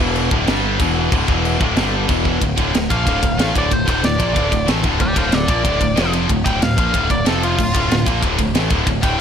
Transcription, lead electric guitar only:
0, 0, Header, 1, 2, 480
1, 0, Start_track
1, 0, Key_signature, -1, "minor"
1, 0, Tempo, 323102
1, 1665, Time_signature, 4, 2, 24, 8
1, 13679, End_track
2, 0, Start_track
2, 0, Title_t, "Lead electric guitar"
2, 0, Program_c, 0, 29
2, 4313, Note_on_c, 0, 77, 116
2, 5243, Note_off_c, 0, 77, 0
2, 5321, Note_on_c, 0, 74, 88
2, 5529, Note_off_c, 0, 74, 0
2, 5538, Note_on_c, 0, 72, 82
2, 5757, Note_off_c, 0, 72, 0
2, 5794, Note_on_c, 0, 72, 88
2, 6006, Note_off_c, 0, 72, 0
2, 6011, Note_on_c, 0, 74, 97
2, 6933, Note_off_c, 0, 74, 0
2, 7443, Note_on_c, 0, 74, 93
2, 7450, Note_on_c, 0, 79, 89
2, 7671, Note_off_c, 0, 79, 0
2, 7678, Note_off_c, 0, 74, 0
2, 7682, Note_on_c, 0, 72, 75
2, 7694, Note_on_c, 0, 77, 74
2, 7929, Note_off_c, 0, 72, 0
2, 7929, Note_on_c, 0, 69, 92
2, 7941, Note_off_c, 0, 77, 0
2, 7941, Note_on_c, 0, 74, 93
2, 8151, Note_off_c, 0, 74, 0
2, 8160, Note_off_c, 0, 69, 0
2, 8169, Note_on_c, 0, 74, 113
2, 9091, Note_off_c, 0, 74, 0
2, 9585, Note_on_c, 0, 79, 91
2, 9844, Note_off_c, 0, 79, 0
2, 9844, Note_on_c, 0, 77, 106
2, 10534, Note_off_c, 0, 77, 0
2, 10558, Note_on_c, 0, 74, 93
2, 10785, Note_off_c, 0, 74, 0
2, 10798, Note_on_c, 0, 69, 99
2, 11026, Note_off_c, 0, 69, 0
2, 11048, Note_on_c, 0, 65, 101
2, 11967, Note_off_c, 0, 65, 0
2, 13421, Note_on_c, 0, 79, 90
2, 13654, Note_off_c, 0, 79, 0
2, 13679, End_track
0, 0, End_of_file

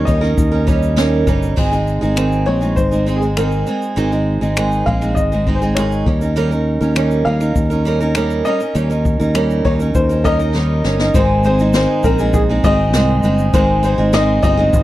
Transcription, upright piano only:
0, 0, Header, 1, 2, 480
1, 0, Start_track
1, 0, Key_signature, -4, "major"
1, 0, Tempo, 598205
1, 1261, Time_signature, 4, 2, 24, 8
1, 11900, End_track
2, 0, Start_track
2, 0, Title_t, "Upright piano"
2, 0, Program_c, 0, 0
2, 42, Note_on_c, 0, 75, 87
2, 979, Note_off_c, 0, 75, 0
2, 1976, Note_on_c, 0, 73, 81
2, 2215, Note_on_c, 0, 72, 98
2, 2226, Note_off_c, 0, 73, 0
2, 2538, Note_on_c, 0, 68, 73
2, 2548, Note_off_c, 0, 72, 0
2, 2579, Note_off_c, 0, 68, 0
2, 2705, Note_on_c, 0, 70, 77
2, 3039, Note_off_c, 0, 70, 0
2, 3900, Note_on_c, 0, 77, 88
2, 4131, Note_on_c, 0, 75, 87
2, 4149, Note_off_c, 0, 77, 0
2, 4452, Note_on_c, 0, 72, 73
2, 4467, Note_off_c, 0, 75, 0
2, 4492, Note_off_c, 0, 72, 0
2, 4614, Note_on_c, 0, 73, 72
2, 4953, Note_off_c, 0, 73, 0
2, 5817, Note_on_c, 0, 77, 89
2, 6044, Note_off_c, 0, 77, 0
2, 6780, Note_on_c, 0, 75, 101
2, 7005, Note_off_c, 0, 75, 0
2, 7743, Note_on_c, 0, 73, 82
2, 7797, Note_off_c, 0, 73, 0
2, 7984, Note_on_c, 0, 72, 97
2, 8217, Note_on_c, 0, 70, 80
2, 8225, Note_on_c, 0, 75, 120
2, 8231, Note_off_c, 0, 72, 0
2, 8668, Note_off_c, 0, 70, 0
2, 8947, Note_on_c, 0, 72, 97
2, 8966, Note_off_c, 0, 75, 0
2, 9179, Note_off_c, 0, 72, 0
2, 9191, Note_on_c, 0, 72, 99
2, 9415, Note_off_c, 0, 72, 0
2, 9427, Note_on_c, 0, 72, 104
2, 9663, Note_on_c, 0, 70, 91
2, 9672, Note_off_c, 0, 72, 0
2, 9900, Note_on_c, 0, 68, 101
2, 9910, Note_off_c, 0, 70, 0
2, 9955, Note_off_c, 0, 68, 0
2, 10146, Note_on_c, 0, 75, 111
2, 10864, Note_on_c, 0, 72, 98
2, 10885, Note_off_c, 0, 75, 0
2, 11098, Note_off_c, 0, 72, 0
2, 11110, Note_on_c, 0, 72, 93
2, 11346, Note_on_c, 0, 75, 110
2, 11353, Note_off_c, 0, 72, 0
2, 11566, Note_off_c, 0, 75, 0
2, 11578, Note_on_c, 0, 75, 103
2, 11900, Note_off_c, 0, 75, 0
2, 11900, End_track
0, 0, End_of_file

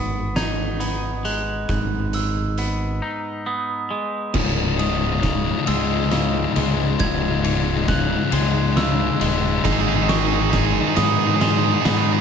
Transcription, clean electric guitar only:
0, 0, Header, 1, 2, 480
1, 0, Start_track
1, 0, Key_signature, 4, "minor"
1, 0, Tempo, 883652
1, 920, Time_signature, 6, 3, 24, 8
1, 6631, End_track
2, 0, Start_track
2, 0, Title_t, "Clean electric guitar"
2, 0, Program_c, 0, 27
2, 0, Note_on_c, 0, 44, 50
2, 0, Note_on_c, 0, 59, 45
2, 195, Note_on_c, 0, 63, 57
2, 428, Note_off_c, 0, 59, 0
2, 435, Note_on_c, 0, 59, 50
2, 678, Note_off_c, 0, 44, 0
2, 678, Note_on_c, 0, 56, 55
2, 921, Note_on_c, 0, 44, 55
2, 1397, Note_off_c, 0, 59, 0
2, 1400, Note_off_c, 0, 63, 0
2, 1404, Note_on_c, 0, 59, 42
2, 1641, Note_on_c, 0, 63, 58
2, 1875, Note_off_c, 0, 59, 0
2, 1881, Note_on_c, 0, 59, 54
2, 1882, Note_off_c, 0, 56, 0
2, 2121, Note_on_c, 0, 56, 56
2, 2124, Note_off_c, 0, 44, 0
2, 2360, Note_on_c, 0, 37, 58
2, 2363, Note_off_c, 0, 56, 0
2, 2363, Note_off_c, 0, 59, 0
2, 2363, Note_off_c, 0, 63, 0
2, 2603, Note_on_c, 0, 44, 53
2, 2840, Note_on_c, 0, 49, 45
2, 3084, Note_on_c, 0, 56, 59
2, 3315, Note_off_c, 0, 49, 0
2, 3322, Note_on_c, 0, 49, 65
2, 3563, Note_off_c, 0, 37, 0
2, 3563, Note_off_c, 0, 56, 0
2, 3565, Note_on_c, 0, 56, 59
2, 3804, Note_off_c, 0, 44, 0
2, 3805, Note_on_c, 0, 37, 65
2, 4040, Note_on_c, 0, 44, 67
2, 4276, Note_off_c, 0, 49, 0
2, 4283, Note_on_c, 0, 49, 55
2, 4523, Note_off_c, 0, 56, 0
2, 4525, Note_on_c, 0, 56, 69
2, 4757, Note_off_c, 0, 49, 0
2, 4763, Note_on_c, 0, 49, 64
2, 5001, Note_off_c, 0, 56, 0
2, 5003, Note_off_c, 0, 37, 0
2, 5003, Note_on_c, 0, 56, 67
2, 5235, Note_off_c, 0, 44, 0
2, 5241, Note_on_c, 0, 44, 75
2, 5242, Note_off_c, 0, 49, 0
2, 5482, Note_on_c, 0, 51, 62
2, 5722, Note_off_c, 0, 56, 0
2, 5722, Note_on_c, 0, 56, 65
2, 5961, Note_on_c, 0, 59, 69
2, 6194, Note_off_c, 0, 56, 0
2, 6201, Note_on_c, 0, 56, 73
2, 6431, Note_off_c, 0, 59, 0
2, 6437, Note_off_c, 0, 44, 0
2, 6437, Note_on_c, 0, 59, 73
2, 6631, Note_off_c, 0, 51, 0
2, 6631, Note_off_c, 0, 56, 0
2, 6631, Note_off_c, 0, 59, 0
2, 6631, End_track
0, 0, End_of_file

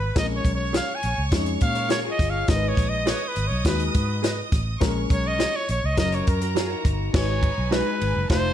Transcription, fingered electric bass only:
0, 0, Header, 1, 2, 480
1, 0, Start_track
1, 0, Tempo, 581395
1, 134, Time_signature, 4, 2, 24, 8
1, 7047, End_track
2, 0, Start_track
2, 0, Title_t, "Fingered electric bass"
2, 0, Program_c, 0, 33
2, 0, Note_on_c, 0, 32, 101
2, 83, Note_off_c, 0, 32, 0
2, 134, Note_on_c, 0, 34, 104
2, 325, Note_off_c, 0, 34, 0
2, 369, Note_on_c, 0, 35, 88
2, 657, Note_off_c, 0, 35, 0
2, 856, Note_on_c, 0, 34, 91
2, 951, Note_off_c, 0, 34, 0
2, 975, Note_on_c, 0, 37, 88
2, 1070, Note_off_c, 0, 37, 0
2, 1090, Note_on_c, 0, 41, 99
2, 1283, Note_off_c, 0, 41, 0
2, 1336, Note_on_c, 0, 46, 102
2, 1717, Note_off_c, 0, 46, 0
2, 1812, Note_on_c, 0, 31, 89
2, 2004, Note_off_c, 0, 31, 0
2, 2054, Note_on_c, 0, 32, 109
2, 2245, Note_off_c, 0, 32, 0
2, 2290, Note_on_c, 0, 34, 88
2, 2578, Note_off_c, 0, 34, 0
2, 2779, Note_on_c, 0, 32, 84
2, 2873, Note_off_c, 0, 32, 0
2, 2897, Note_on_c, 0, 35, 87
2, 2991, Note_off_c, 0, 35, 0
2, 3012, Note_on_c, 0, 39, 101
2, 3204, Note_off_c, 0, 39, 0
2, 3261, Note_on_c, 0, 44, 103
2, 3640, Note_off_c, 0, 44, 0
2, 3736, Note_on_c, 0, 33, 95
2, 3926, Note_off_c, 0, 33, 0
2, 3978, Note_on_c, 0, 34, 118
2, 4168, Note_off_c, 0, 34, 0
2, 4214, Note_on_c, 0, 35, 90
2, 4501, Note_off_c, 0, 35, 0
2, 4700, Note_on_c, 0, 34, 98
2, 4793, Note_off_c, 0, 34, 0
2, 4822, Note_on_c, 0, 37, 93
2, 4915, Note_off_c, 0, 37, 0
2, 4934, Note_on_c, 0, 30, 110
2, 5125, Note_off_c, 0, 30, 0
2, 5183, Note_on_c, 0, 42, 95
2, 5561, Note_off_c, 0, 42, 0
2, 5655, Note_on_c, 0, 31, 97
2, 5846, Note_off_c, 0, 31, 0
2, 5898, Note_on_c, 0, 32, 115
2, 6183, Note_off_c, 0, 32, 0
2, 6256, Note_on_c, 0, 35, 94
2, 6446, Note_off_c, 0, 35, 0
2, 6617, Note_on_c, 0, 32, 88
2, 6712, Note_off_c, 0, 32, 0
2, 6741, Note_on_c, 0, 30, 96
2, 6834, Note_off_c, 0, 30, 0
2, 6852, Note_on_c, 0, 29, 108
2, 7044, Note_off_c, 0, 29, 0
2, 7047, End_track
0, 0, End_of_file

